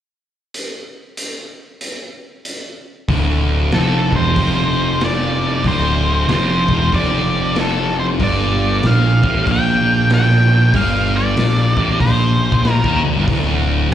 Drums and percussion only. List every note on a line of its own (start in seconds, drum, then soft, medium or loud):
0.54 closed hi-hat medium
1.17 closed hi-hat medium
1.81 closed hi-hat medium
2.45 closed hi-hat medium
3.08 kick loud
3.08 open hi-hat medium
3.72 snare loud
3.72 open hi-hat medium
4.12 kick medium
4.36 kick loud
4.36 open hi-hat medium
5.01 snare loud
5.01 open hi-hat medium
5.64 kick loud
5.64 open hi-hat medium
6.29 snare loud
6.29 open hi-hat medium
6.68 kick loud
6.92 kick loud
6.92 open hi-hat soft
7.56 snare loud
7.56 open hi-hat medium
8.20 kick loud
8.20 open hi-hat medium
8.83 snare loud
8.83 open hi-hat medium
9.23 kick loud
9.47 kick loud
9.47 open hi-hat medium
10.10 snare loud
10.10 open hi-hat medium
10.74 kick loud
10.74 open hi-hat medium
11.37 snare loud
11.37 open hi-hat medium
11.77 kick loud
12.00 kick loud
12.00 open hi-hat medium
12.52 kick loud
12.64 snare loud
12.64 open hi-hat soft
12.84 kick loud
13.28 kick loud
13.28 open hi-hat medium